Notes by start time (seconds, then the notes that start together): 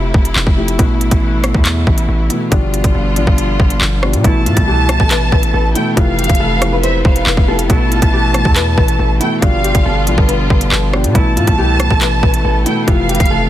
Already playing: F1 C3 F3 A3 E4
0.14 F1, kick
0.25 closed hi-hat
0.36 F1, clap
0.47 F1, kick
0.56 C3 F3 A3 E4
0.68 closed hi-hat
0.78 A1 B2 E3 A3 E4, kick, closed hi-hat
1.01 closed hi-hat
1.11 A1, kick, closed hi-hat
1.43 B2 E3 A3 E4, cross-stick, closed hi-hat
1.55 E2, kick
1.65 clap, closed hi-hat
1.87 A1, kick
1.98 closed hi-hat
2.09 A1
2.29 B2 E3 A3 E4, closed hi-hat
2.51 G1 B2 D3 F3 G3 B3 D4 F4, kick, closed hi-hat
2.74 closed hi-hat
2.84 G1, kick, closed hi-hat
2.95 G1
3.15 A1 B2 F3 G3 D4, closed hi-hat
3.27 G1, kick
3.38 closed hi-hat
3.60 G1, kick
3.70 closed hi-hat
3.81 G1, clap
4.02 B2 F3 G3 D4, cross-stick
4.13 B2, closed hi-hat
4.23 A1 B2 E3 A3 B3 E4 A5, kick, closed hi-hat
4.46 A2 F4, closed hi-hat
4.57 C2, kick, closed hi-hat
4.68 G4
4.88 B2 E3 A3 E4, cross-stick, closed hi-hat
5.00 A1 A4, kick
5.11 B4, clap, closed hi-hat
5.32 A1 B4, kick
5.43 closed hi-hat
5.54 A1 A4
5.74 B2 E3 A3 E4 G5, closed hi-hat
5.96 F1 C3 E3 F3 A3 F4 F5, kick, closed hi-hat
6.18 G4, closed hi-hat
6.24 closed hi-hat
6.29 F1, kick, closed hi-hat
6.35 closed hi-hat
6.40 F1 A4
6.61 C3 F3 A3 E4, cross-stick, closed hi-hat
6.72 B4
6.83 C5 E5, closed hi-hat
7.05 F1 C5 F5, kick
7.16 closed hi-hat
7.26 F1 B4, clap
7.37 F1, kick
7.47 C3 F3 A3 E4 A4
7.59 closed hi-hat
7.69 A1 B2 E3 A3 E4 A5, kick, closed hi-hat
7.91 F4, closed hi-hat
8.02 A1, kick, closed hi-hat
8.13 G4
8.33 B2 E3 A3 E4, cross-stick, closed hi-hat
8.45 E2 A4, kick
8.56 B4, clap, closed hi-hat
8.78 A1 B4, kick
8.88 closed hi-hat
8.99 A1 A4
9.20 B2 E3 A3 E4 G5, closed hi-hat
9.41 G1 B2 D3 F3 G3 B3 D4 F4 F5, kick, closed hi-hat
9.64 G4, closed hi-hat
9.75 G1, kick, closed hi-hat
9.86 G1 A4
10.06 A1 B2 F3 G3 D4, closed hi-hat
10.18 G1 B4, kick
10.29 B4, closed hi-hat
10.50 G1 B4, kick
10.61 closed hi-hat
10.72 G1 A4, clap
10.92 B2 F3 G3 D4 G4, cross-stick
11.04 B2, closed hi-hat
11.14 A1 B2 E3 A3 B3 E4 A5, kick, closed hi-hat
11.37 A2 F4, closed hi-hat
11.47 C2, kick, closed hi-hat
11.58 G4
11.79 B2 E3 A3 E4, cross-stick, closed hi-hat
11.91 A1 A4, kick
12.01 B4, clap, closed hi-hat
12.23 A1 B4, kick
12.34 closed hi-hat
12.45 A1 A4
12.65 B2 E3 A3 E4 G5, closed hi-hat
12.87 F1 C3 E3 F3 A3 F4 F5, kick, closed hi-hat
13.09 G4, closed hi-hat
13.15 closed hi-hat
13.20 F1, kick, closed hi-hat
13.25 closed hi-hat
13.31 F1 A4